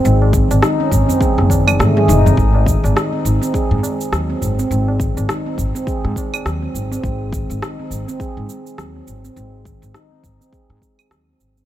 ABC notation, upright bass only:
X:1
M:4/4
L:1/16
Q:"Swing 16ths" 1/4=103
K:none
V:1 name="Upright bass" clef=bass
^G,,,2 z G,,, z2 G,,, z2 ^F,,,3 ^G,,2 F,,, z | ^G,,,2 z G,,, z2 G,,, z2 ^G,, z2 ^D,, z G,,, z | ^G,,,2 z G,,, z2 G,,, z2 ^G,, z2 ^D,, z G,,, z | ^G,,,2 z G,,, z2 G,,, z2 ^G,, z2 ^D,, z G,,, z |
^G,,,2 z G,,, z2 G,,, z2 ^G,, z2 ^D,, z G,,, z |]